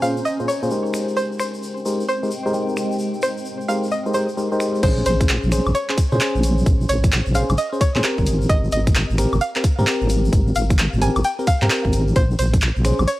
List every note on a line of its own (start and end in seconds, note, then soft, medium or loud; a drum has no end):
0.00 0.20 A#2 medium
0.00 0.94 C#4 medium
0.00 0.20 C#4 medium
0.00 0.20 F4 medium
0.00 0.20 G#4 medium
0.00 2.37 C5 medium
0.00 0.20 C5 medium
0.00 0.18 F5 medium
0.00 0.94 G#5 medium
0.00 4.83 A#5 medium
0.00 shaker medium
0.17 shaker soft
0.25 0.41 D#5 medium
0.25 shaker soft
0.40 0.47 A#2 medium
0.40 0.47 C#4 medium
0.40 0.47 F4 medium
0.40 0.47 G#4 medium
0.40 0.47 C5 medium
0.40 shaker soft
0.48 0.68 C#5 medium
0.48 shaker medium
0.63 0.69 A#2 medium
0.63 0.69 C#4 medium
0.63 0.69 F4 medium
0.63 0.69 G#4 medium
0.63 0.69 C5 loud
0.63 shaker soft
0.71 1.83 G#3 medium
0.71 1.83 D#4 medium
0.71 1.83 G4 medium
0.71 1.83 A#4 medium
0.71 1.83 C5 medium
0.71 shaker medium
0.86 shaker soft
0.94 4.83 C4 medium
0.94 finger snap soft
0.94 shaker medium
1.08 4.83 G#3 medium
1.08 4.83 G5 medium
1.08 shaker soft
1.17 1.32 C5 loud
1.17 shaker soft
1.32 shaker soft
1.40 1.60 C5 medium
1.40 finger snap soft
1.40 shaker medium
1.54 shaker soft
1.63 shaker soft
1.77 shaker soft
1.85 2.03 G#3 medium
1.85 2.03 D#4 medium
1.85 2.03 G4 medium
1.85 2.03 A#4 medium
1.85 2.03 C5 medium
1.85 shaker medium
2.00 shaker soft
2.08 2.28 C5 medium
2.08 shaker soft
2.23 2.30 G#3 medium
2.23 2.30 D#4 medium
2.23 2.30 G4 medium
2.23 2.30 A#4 medium
2.23 2.30 C5 medium
2.23 shaker soft
2.31 shaker medium
2.46 2.52 G#3 medium
2.46 2.52 D#4 medium
2.46 2.52 G4 medium
2.46 2.52 A#4 medium
2.46 2.52 C5 loud
2.46 shaker soft
2.54 3.67 G#3 medium
2.54 3.67 D#4 medium
2.54 3.67 G4 medium
2.54 3.67 A#4 medium
2.54 3.66 C5 medium
2.54 shaker soft
2.69 shaker soft
2.77 finger snap soft
2.77 shaker medium
2.92 shaker soft
2.99 shaker soft
3.14 shaker soft
3.22 3.49 C5 medium
3.22 finger snap soft
3.22 shaker medium
3.37 shaker soft
3.45 shaker soft
3.61 shaker soft
3.68 3.87 G#3 medium
3.68 3.87 D#4 medium
3.68 3.86 G4 medium
3.68 3.86 A#4 medium
3.68 3.86 C5 medium
3.68 3.84 F5 medium
3.68 shaker medium
3.83 shaker soft
3.91 4.07 D#5 medium
3.91 shaker soft
4.06 4.13 G#3 medium
4.06 4.13 D#4 medium
4.06 4.13 G4 medium
4.06 4.13 A#4 medium
4.06 4.13 C5 medium
4.06 shaker soft
4.14 4.27 G#3 medium
4.14 4.27 D#4 medium
4.14 4.27 G4 medium
4.14 4.27 A#4 medium
4.14 4.34 C5 medium
4.14 4.27 C5 medium
4.14 shaker medium
4.29 shaker soft
4.37 4.48 G#3 medium
4.37 4.48 D#4 medium
4.37 4.48 G4 medium
4.37 4.48 A#4 medium
4.37 4.48 C5 medium
4.37 shaker soft
4.52 4.82 G#3 medium
4.52 4.82 D#4 medium
4.52 4.82 G4 medium
4.52 4.82 A#4 medium
4.52 4.82 C5 loud
4.52 shaker soft
4.60 finger snap medium
4.60 shaker medium
4.75 shaker soft
4.83 5.02 A#1 loud
4.83 5.48 C#4 medium
4.83 5.48 G#4 medium
4.83 5.48 C5 loud
4.83 4.99 C5 loud
4.83 kick loud
4.83 closed hi-hat medium
4.83 crash loud
4.83 shaker medium
4.97 shaker soft
5.06 5.38 A#1 medium
5.06 5.26 C5 loud
5.06 open hi-hat loud
5.06 shaker medium
5.21 finger snap soft
5.21 kick loud
5.21 closed hi-hat medium
5.21 shaker soft
5.29 clap loud
5.29 closed hi-hat medium
5.29 shaker medium
5.43 5.60 A#1 medium
5.43 shaker soft
5.52 5.70 C#4 medium
5.52 5.70 G#4 medium
5.52 5.70 C5 medium
5.52 finger snap medium
5.52 open hi-hat loud
5.52 shaker loud
5.66 5.73 A#1 loud
5.66 high woodblock medium
5.66 shaker soft
5.75 5.95 C#5 loud
5.75 closed hi-hat medium
5.75 shaker soft
5.89 5.97 C#4 medium
5.89 5.97 G#4 medium
5.89 5.97 C5 medium
5.89 clap medium
5.89 shaker soft
5.98 kick loud
5.98 open hi-hat loud
5.98 shaker medium
6.12 6.19 A#2 medium
6.12 6.18 C#4 loud
6.12 6.18 G#4 medium
6.12 6.18 C5 loud
6.12 shaker soft
6.20 7.33 C#4 medium
6.20 7.33 G#4 medium
6.20 7.33 C5 medium
6.20 finger snap soft
6.20 clap loud
6.20 closed hi-hat medium
6.20 shaker medium
6.35 6.63 A#1 medium
6.35 shaker soft
6.43 open hi-hat loud
6.43 shaker loud
6.58 shaker soft
6.66 6.85 A#1 loud
6.66 kick loud
6.66 closed hi-hat medium
6.66 shaker medium
6.81 shaker soft
6.89 7.21 A#1 medium
6.89 7.15 C#5 medium
6.89 open hi-hat loud
6.89 shaker medium
7.03 finger snap soft
7.03 kick loud
7.03 closed hi-hat medium
7.03 shaker soft
7.12 clap loud
7.12 closed hi-hat medium
7.12 shaker medium
7.26 7.43 A#1 medium
7.26 shaker soft
7.35 7.53 C#4 medium
7.35 7.53 G#4 medium
7.35 7.53 C5 medium
7.35 7.50 F5 loud
7.35 open hi-hat loud
7.35 shaker medium
7.49 7.56 A#1 loud
7.49 closed hi-hat soft
7.49 high woodblock medium
7.49 shaker soft
7.58 7.73 D#5 medium
7.58 closed hi-hat medium
7.58 shaker medium
7.72 7.80 C#4 medium
7.72 7.80 G#4 medium
7.72 7.80 C5 medium
7.72 shaker soft
7.81 8.01 C#5 loud
7.81 kick loud
7.81 open hi-hat loud
7.81 shaker loud
7.95 8.02 A#2 medium
7.95 8.02 C#4 medium
7.95 8.02 G#4 medium
7.95 8.02 C5 loud
7.95 clap medium
7.95 shaker soft
8.03 9.16 C4 medium
8.03 9.16 G4 medium
8.03 9.16 A#4 medium
8.03 finger snap soft
8.03 clap loud
8.03 closed hi-hat medium
8.03 shaker medium
8.18 8.46 G#1 medium
8.18 kick medium
8.18 shaker soft
8.26 open hi-hat loud
8.26 shaker medium
8.41 shaker soft
8.49 8.69 G#1 loud
8.49 8.65 D#5 loud
8.49 kick loud
8.49 closed hi-hat medium
8.49 shaker medium
8.64 shaker soft
8.72 9.05 G#1 medium
8.72 8.92 D#5 medium
8.72 open hi-hat loud
8.72 shaker medium
8.87 finger snap soft
8.87 kick loud
8.87 closed hi-hat medium
8.87 shaker soft
8.95 clap loud
8.95 closed hi-hat medium
8.95 shaker medium
9.10 9.26 G#1 medium
9.10 shaker soft
9.18 9.36 C4 medium
9.18 9.36 G4 medium
9.18 9.36 A#4 medium
9.18 finger snap medium
9.18 open hi-hat loud
9.18 shaker medium
9.32 9.39 G#1 loud
9.32 high woodblock medium
9.32 shaker soft
9.41 9.61 F5 loud
9.41 closed hi-hat medium
9.41 shaker medium
9.56 9.63 C4 medium
9.56 9.63 G4 medium
9.56 9.63 A#4 medium
9.56 clap medium
9.56 shaker soft
9.64 kick loud
9.64 open hi-hat loud
9.64 shaker medium
9.79 9.85 G#2 loud
9.79 9.85 C4 loud
9.79 9.85 G4 medium
9.79 9.85 A#4 loud
9.79 shaker soft
9.87 10.99 C4 medium
9.87 10.99 G4 medium
9.87 10.99 A#4 medium
9.87 finger snap soft
9.87 clap loud
9.87 closed hi-hat medium
9.87 shaker medium
10.01 10.30 G#1 medium
10.01 shaker soft
10.10 open hi-hat loud
10.10 shaker medium
10.25 shaker soft
10.33 10.52 G#1 loud
10.33 kick loud
10.33 closed hi-hat medium
10.33 shaker medium
10.47 shaker soft
10.55 10.88 G#1 medium
10.55 10.82 F5 medium
10.55 open hi-hat loud
10.55 shaker loud
10.70 finger snap soft
10.70 kick loud
10.70 closed hi-hat medium
10.70 shaker soft
10.79 clap loud
10.79 closed hi-hat medium
10.79 shaker medium
10.93 11.10 G#1 medium
10.93 shaker soft
11.01 11.19 C4 medium
11.01 11.19 G4 medium
11.01 11.19 A#4 medium
11.01 11.17 G#5 medium
11.01 open hi-hat loud
11.01 shaker loud
11.16 11.22 G#1 loud
11.16 closed hi-hat soft
11.16 high woodblock medium
11.16 shaker soft
11.24 11.40 G5 medium
11.24 closed hi-hat medium
11.24 shaker medium
11.39 11.46 C4 medium
11.39 11.46 G4 medium
11.39 11.46 A#4 medium
11.39 shaker soft
11.47 11.67 F5 loud
11.47 kick loud
11.47 open hi-hat loud
11.47 shaker loud
11.62 11.68 G#2 medium
11.62 11.68 C4 loud
11.62 11.68 G4 medium
11.62 11.68 A#4 loud
11.62 clap medium
11.62 shaker soft
11.70 12.15 C4 medium
11.70 12.15 G4 medium
11.70 12.15 A#4 medium
11.70 finger snap soft
11.70 clap loud
11.70 closed hi-hat medium
11.70 shaker medium
11.85 12.13 G#1 medium
11.85 kick medium
11.85 shaker soft
11.93 open hi-hat medium
11.93 shaker medium
12.08 shaker soft
12.16 12.35 A#1 loud
12.16 12.31 C5 loud
12.16 kick loud
12.16 closed hi-hat medium
12.16 shaker medium
12.31 shaker soft
12.39 12.71 A#1 medium
12.39 12.59 C5 medium
12.39 open hi-hat loud
12.39 shaker loud
12.53 finger snap soft
12.53 kick loud
12.53 closed hi-hat medium
12.53 shaker soft
12.61 clap loud
12.61 closed hi-hat medium
12.61 shaker medium
12.76 12.93 A#1 medium
12.76 shaker soft
12.85 13.03 C#4 medium
12.85 13.03 G#4 medium
12.85 13.03 C5 medium
12.85 finger snap soft
12.85 open hi-hat loud
12.85 shaker medium
12.99 13.06 A#1 loud
12.99 high woodblock medium
12.99 shaker soft
13.07 13.20 C#5 loud
13.07 closed hi-hat medium
13.07 shaker medium